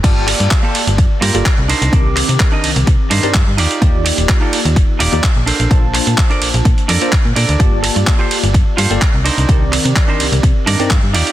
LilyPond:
<<
  \new Staff \with { instrumentName = "Clean electric guitar" } { \time 4/4 \key g \minor \tempo 4 = 127 r4 r16 <bes f' g' a'>16 r4 <bes f' g' bes'>8 r8 <d' ees' bes' c''>8~ | <d' ees' bes' c''>16 r4 <d' ees' bes' ees''>16 r4 <d' ees' bes' c''>8 r8 <ees' f' g' d''>8~ | <ees' f' g' d''>16 r4 <ees' f' g' a'>16 r4 <ees' f' g' d''>8 r8 <d' a' bes' c''>8~ | <d' a' bes' c''>16 r4 <d' a' bes' d''>16 r4 <d' a' bes' d''>8 r8 <d' a' bes' d''>8 |
r4 r16 <f' g' a' c''>16 r4 <f' g' a' c''>8 r8 <d' ees' bes' c''>8~ | <d' ees' bes' c''>16 r4 <d' ees' bes' c''>16 r4 <d' ees' bes' d''>8 r8 <ees' f' g' d''>8 | }
  \new Staff \with { instrumentName = "Tine electric piano" } { \time 4/4 \key g \minor <bes f' g' d'' a''>2~ <bes f' g' d'' a''>8. <bes f' g' a' d''>16 r4 | <ees c' g' bes' d'''>2~ <ees c' g' bes' d'''>8. <c' ees' g' bes' d''>16 r4 | <bes ees' f' g' d''>2~ <bes ees' f' g' d''>8. <bes ees' f' g' d''>16 r4 | <bes d' f' c'' a''>2~ <bes d' f' c'' a''>8. <bes d' f' a' c''>16 r4 |
<bes f' g' d'' a''>2~ <bes f' g' d'' a''>8. <bes f' g' a' d''>16 r4 | <ees c' g' bes' d''>2~ <ees c' g' bes' d''>8. <c' ees' g' bes' d''>16 r4 | }
  \new Staff \with { instrumentName = "FM bass" } { \clef bass \time 4/4 \key g \minor g,,8. g,16 r8. g,,16 g,16 r16 g,16 g,,16 r16 c,16 r16 c,16 | r8. c16 r8 c,16 c,16 c16 r16 g,16 g,16 g,16 g,16 ees,16 r16 | ees,8. ees,,16 r8. ees,16 ees,,16 r16 ees,,16 ees,16 r16 bes,,16 r16 bes,,16 | bes,,8. bes,16 r8 bes,,16 bes,,16 bes,16 r16 f,16 r8 bes,16 bes,16 d,16 |
g,,8. g,16 r8. g,,16 g,16 r16 g,16 g,,16 r16 c,16 r16 c,16 | c,8. c16 r8 c,16 c,16 c16 r16 g,16 g,16 g,16 g,16 ees,16 r16 | }
  \new DrumStaff \with { instrumentName = "Drums" } \drummode { \time 4/4 <cymc hh bd cymr>8 <hho cymr>16 hh16 <hc hh bd cymr>8 <hho cymr>16 hh16 <hh bd cymr>8 <hho cymr>16 hh16 <hc hh bd cymr>8 <hho cymr>16 hh16 | <hh bd cymr>8 <hc hho cymr>16 hh16 <hc hh bd cymr>8 <hho cymr>16 hh16 <hh bd cymr>8 <hho cymr>16 hh16 <hc hh bd>8 <hho cymr>16 hh16 | <hh bd cymr>8 <hho cymr>16 hh16 <hc hh bd cymr>8 <hho cymr>16 hh16 <hh bd cymr>8 <hho cymr>16 hh16 <hc hh bd cymr>8 <hho cymr>16 hh16 | <hh bd cymr>8 <hc hho cymr>16 hh16 <hc hh bd cymr>16 hh16 <hho cymr>16 hh16 <hh bd cymr>16 hh16 <hho cymr>16 hh16 <hc hh bd cymr>8 <hho cymr>16 hh16 |
<hh bd cymr>8 <hho cymr>16 hh16 <hc hh bd cymr>8 <hho cymr>16 hh16 <hh bd cymr>8 <hho cymr>16 hh16 <hc hh bd cymr>8 <hho cymr>16 hh16 | <hh bd cymr>8 <hc hho cymr>16 hh16 <hc hh bd cymr>8 <hho cymr>16 hh16 <hh bd cymr>8 <hho cymr>16 hh16 <hc hh bd cymr>8 <hho cymr>16 hh16 | }
>>